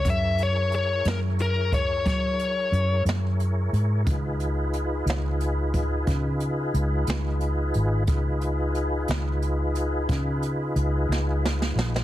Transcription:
<<
  \new Staff \with { instrumentName = "Lead electric guitar" } { \time 12/8 \key des \mixolydian \tempo 4. = 60 fes''8 des''8 des''8 bes'8 bes'8 des''8 des''4. r4. | r1. | r1. | }
  \new Staff \with { instrumentName = "Tonewheel organ" } { \time 12/8 \key des \mixolydian <fes' aes' bes' des''>1. | <ees' f' aes' ces''>1. | <ees' f' aes' ces''>1. | }
  \new Staff \with { instrumentName = "Fingered electric bass" } { \clef bass \time 12/8 \key des \mixolydian ges,4. ges,4. ges4 ges,8 ges,4 aes,8 | des,4. des,4. des4 des,8 des,4 aes,,8 | des,4. des,4. des4 des,8 des,4 bes,,8 | }
  \new DrumStaff \with { instrumentName = "Drums" } \drummode { \time 12/8 <hh bd>8 hh8 hh8 <hh sn>8 hh8 <hh bd>8 <hh bd sn>8 hh8 hh8 <hh sn>8 hh8 hh8 | <hh bd>8 hh8 hh8 <hh sn>8 hh8 <hh bd>8 <hh bd sn>8 hh8 hh8 <hh sn>8 hh8 hh8 | <hh bd>8 hh8 hh8 <hh sn>8 hh8 hh8 <hh bd sn>8 hh8 hh8 sn8 sn16 sn16 sn16 sn16 | }
>>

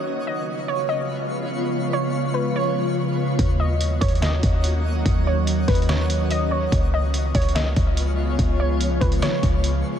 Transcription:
<<
  \new Staff \with { instrumentName = "Synth pluck" } { \time 4/4 \key des \mixolydian \tempo 4 = 144 r8 ees''4 des''8 ees''4 r4 | r8 des''4 ces''8 des''2 | r8 ees''4 des''8 ees''4 r4 | r8 des''4 ces''8 des''4 ees''8 des''8 |
r8 ees''4 des''8 ees''4 r4 | r8 des''4 ces''8 des''2 | }
  \new Staff \with { instrumentName = "Synth texture" } { \time 4/4 \key des \mixolydian <ces' f' des''>1~ | <ces' f' des''>1 | <des' ges' ees''>1~ | <des' ges' ees''>1 |
<ces' f' des''>1~ | <ces' f' des''>1 | }
  \new Staff \with { instrumentName = "Ambient pad" } { \clef bass \time 4/4 \key des \mixolydian <des f aes ces' f'>1~ | <des f aes ces' f'>1 | <ees ges bes des' ges'>1~ | <ees ges bes des' ges'>1 |
<des f aes ces' f'>1~ | <des f aes ces' f'>1 | }
  \new Staff \with { instrumentName = "808-style bass" } { \clef bass \time 4/4 \key des \mixolydian r1 | r1 | ees,4. ees,4 ees,4. | ees,4. ees,2~ ees,8 |
des,4. des,4 des,4. | des,4. des,8 r8 des,4 r8 | }
  \new DrumStaff \with { instrumentName = "Drums" } \drummode { \time 4/4 r4 r4 r4 r4 | r4 r4 r4 r4 | <hh bd>4 \tuplet 3/2 { hh16 r16 r16 <hh bd>16 hh16 hh16 } <hh sn>8 <hh bd>8 hh4 | <hh bd>4 \tuplet 3/2 { hh16 r16 r16 <hh hho bd>16 hh16 hh16 } <hh sn>8 hh8 hh4 |
<hh bd>4 \tuplet 3/2 { hh16 r16 r16 <hh bd>16 hh16 hh16 } <hh sn>8 <hh bd>8 hh4 | <hh bd>4 hh8 <hh bd>16 hh16 <hh sn>8 <hh bd>8 hh4 | }
>>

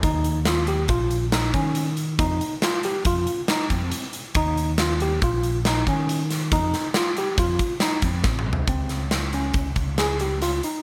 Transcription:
<<
  \new Staff \with { instrumentName = "Tine electric piano" } { \time 5/4 \key f \minor \tempo 4 = 138 ees'4 f'8 g'8 f'4 ees'8 des'4 r8 | ees'4 f'8 g'8 f'4 ees'8 c'4 r8 | ees'4 f'8 g'8 f'4 ees'8 des'4 r8 | ees'4 f'8 g'8 f'4 ees'8 c'4 r8 |
c'4 r8 des'4 r8 aes'8 g'8 f'8 ees'8 | }
  \new Staff \with { instrumentName = "Fretless electric bass" } { \clef bass \time 5/4 \key f \minor ees,2 bes,,4. ees4. | f,8 r4. f,8 r4 f,8 r4 | ees,2 bes,,4. ees4. | f,8 r4. f,8 r4 f,8 a,,8 c,8 |
des,2 des,8 des,2 r8 | }
  \new DrumStaff \with { instrumentName = "Drums" } \drummode { \time 5/4 <hh bd>8 hh8 <hh sn>8 hh8 <hh bd>8 hh8 <hh sn>8 <hh bd>8 hh8 hh8 | <hh bd>8 hh8 <hh sn>8 hh8 <hh bd>8 hh8 <hh sn>8 <hh bd>8 hh8 hh8 | <hh bd>8 hh8 <hh sn>8 hh8 <hh bd>8 hh8 <hh sn>8 <hh bd>8 hh8 <hh sn>8 | <hh bd>8 <hh sn>8 <hh sn>8 hh8 <hh bd>8 <hh bd>8 <hh sn>8 <hh bd>8 \tuplet 3/2 { <bd sn>8 toml8 tomfh8 } |
<hh bd>8 <hh sn>8 <hh sn>8 hh8 <hh bd>8 <hh bd>8 <hh sn>8 hh8 <hh sn>8 hh8 | }
>>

